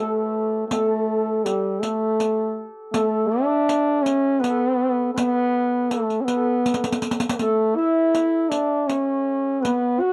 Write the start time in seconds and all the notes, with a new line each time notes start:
Already playing: A3 G4 B4 C#5
0.00 A4
0.68 A3, riq
0.73 A4
0.78 A4
0.86 A4
0.94 A4
0.99 A4
1.06 A4
1.17 A4
1.25 A4
1.33 A4
1.45 G3 G4, riq
1.81 A3 A4, riq
2.20 riq
2.92 A3 A4, riq
3.29 D4 D5
3.38 E5
3.44 D5
3.69 riq
4.02 C#4 C#5, riq
4.40 B3 B4
4.44 riq
4.50 A4
4.57 B4
5.15 B3 B4, riq
5.91 A3 A4, riq
6.10 riq
6.21 B3 C#4
6.28 B4, riq
6.37 A4
6.44 B4
6.66 riq
6.74 riq
6.84 riq
6.92 riq
7.02 riq
7.11 riq
7.20 riq
7.29 B3, riq
7.38 A3 A4, riq
7.76 E4 E5
8.15 riq
8.50 D4 D5, riq
8.87 C#4 C#5, riq
9.62 B3 B4, riq
10.00 F#4 F#5
10.09 F#5